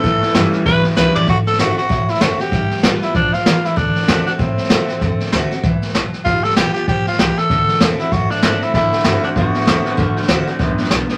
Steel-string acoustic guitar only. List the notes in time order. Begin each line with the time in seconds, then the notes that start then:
0.04 A2
0.34 E3 G3 C#4 E4
0.66 E2
0.95 E3 G3 C#4 E4
1.28 D3
1.58 D3 A3 C4 F#4
1.77 C4 F#4
1.89 A2
2.20 D3 A3 C4 F#4
2.39 C4 F#4
2.53 G3
2.84 G3 B3 F4
3.02 B3 F4
3.15 F3
3.46 E3
3.76 D3
4.06 D3 A3 C4 F#4
4.26 C4 F#4
4.39 A2
4.70 D3 A3 C4 F#4
4.88 C4 F#4
5.02 D3
5.32 D3 A3 C4 F#4
5.51 C4 F#4
5.63 E3
5.95 F#3
6.26 G3
6.57 G3 B3 F4
6.76 B3 F4
6.89 F3
7.20 E3
7.51 D3
7.81 D3 A3 C4 F#4
7.99 C4 F#4
8.14 A2
8.43 D3 A3 C4 F#4
8.75 D3
9.05 D3 A3 C4 F#4
9.23 C4 F#4
9.37 A2
9.66 D3 A3 C4 F#4
9.85 C4 F#4
9.97 D3
10.28 D3 A3 C4 F#4
10.47 C4 F#4
10.59 F#2
10.91 B2